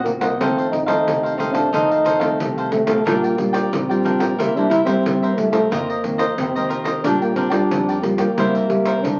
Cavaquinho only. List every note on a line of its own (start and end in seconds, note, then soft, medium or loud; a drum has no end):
0.06 muted cavaquinho stroke soft
0.21 0.39 C5 soft
0.21 0.38 D#5 soft
0.21 0.38 F#5 soft
0.40 0.56 D#4 medium
0.40 0.56 A4 medium
0.40 0.56 C5 medium
0.40 0.56 F5 medium
0.57 0.71 A4 soft
0.57 0.71 C5 soft
0.57 0.72 F5 soft
0.72 muted cavaquinho stroke soft
0.86 1.21 A4 medium
0.86 1.21 C5 medium
0.86 1.20 F5 medium
1.23 1.37 A4 soft
1.23 1.38 C5 soft
1.23 1.38 F5 soft
1.38 1.54 D#4 soft
1.38 1.54 A4 soft
1.38 1.53 C5 soft
1.38 1.52 F5 medium
1.54 1.71 A4 medium
1.54 1.71 C5 medium
1.54 1.71 F5 medium
1.73 1.89 D#4 medium
1.73 1.89 A4 medium
1.73 1.89 C5 medium
1.73 1.89 F5 medium
1.91 2.04 A4 soft
1.91 2.05 C5 soft
1.91 2.05 F5 soft
2.04 2.21 D#4 medium
2.04 2.20 A4 medium
2.04 2.19 C5 medium
2.04 2.18 F5 medium
2.19 2.54 A4 medium
2.19 2.54 C5 medium
2.19 2.53 F5 medium
2.58 2.71 A4 soft
2.58 2.71 C5 soft
2.58 2.71 F5 soft
2.72 muted cavaquinho stroke soft
2.87 3.05 A4 soft
2.87 3.04 C5 soft
2.87 3.04 F5 medium
3.05 3.21 D4 medium
3.05 3.22 A#4 medium
3.05 3.22 D5 medium
3.05 3.22 G5 medium
3.24 3.37 A#4 soft
3.24 3.37 D5 soft
3.24 3.37 G5 soft
3.38 muted cavaquinho stroke soft
3.53 3.87 A#4 medium
3.53 3.87 D5 medium
3.53 3.87 G5 medium
3.89 4.03 A#4 soft
3.89 4.04 D5 soft
3.89 4.04 G5 soft
4.04 4.21 D4 soft
4.04 4.20 A#4 soft
4.04 4.19 D5 medium
4.04 4.19 G5 medium
4.20 4.37 A#4 medium
4.20 4.37 D5 medium
4.20 4.37 G5 medium
4.38 4.54 E4 medium
4.38 4.54 A#4 medium
4.38 4.55 C5 medium
4.38 4.55 E5 medium
4.56 4.69 A#4 soft
4.56 4.70 C5 soft
4.56 4.70 E5 soft
4.70 4.87 E4 medium
4.70 4.86 A#4 medium
4.70 4.85 C5 medium
4.70 4.84 E5 medium
4.85 5.20 A#4 medium
4.85 5.20 C5 medium
4.85 5.19 E5 medium
5.22 5.36 A#4 soft
5.22 5.37 C5 soft
5.22 5.37 E5 medium
5.37 muted cavaquinho stroke soft
5.52 5.70 A#4 soft
5.52 5.70 C5 soft
5.52 5.69 E5 soft
5.71 5.87 F4 medium
5.71 5.88 A#4 medium
5.71 5.88 C5 medium
5.71 5.88 D#5 medium
5.89 6.03 A#4 soft
5.89 6.03 C5 soft
5.89 6.03 D#5 medium
6.04 muted cavaquinho stroke soft
6.18 6.53 A#4 medium
6.18 6.53 C5 medium
6.18 6.52 D#5 medium
6.55 6.68 A#4 soft
6.55 6.69 C5 soft
6.55 6.70 D#5 soft
6.69 6.86 F4 soft
6.69 6.85 A#4 soft
6.69 6.84 C5 medium
6.69 6.83 D#5 soft
6.84 7.03 A#4 medium
6.84 7.02 C5 medium
6.84 7.02 D#5 medium
7.04 7.20 D4 medium
7.04 7.20 A#4 medium
7.04 7.21 D5 medium
7.04 7.21 G5 medium
7.22 7.35 A#4 soft
7.22 7.36 D5 soft
7.22 7.36 G5 soft
7.36 7.52 D4 medium
7.36 7.51 A#4 medium
7.36 7.50 D5 medium
7.36 7.49 G5 medium
7.50 7.86 A#4 soft
7.50 7.85 D5 medium
7.50 7.85 G5 medium
7.89 8.03 A#4 soft
7.89 8.03 D5 soft
7.89 8.03 G5 medium
8.03 muted cavaquinho stroke soft
8.19 8.36 A#4 soft
8.19 8.36 D5 soft
8.19 8.36 G5 soft
8.38 8.53 E4 medium
8.38 8.54 A#4 medium
8.38 8.54 C5 medium
8.38 8.54 E5 medium
8.56 8.70 A#4 soft
8.56 8.71 E5 soft
8.70 muted cavaquinho stroke soft
8.86 9.19 A#4 medium
8.86 9.19 C5 medium
8.86 9.19 E5 medium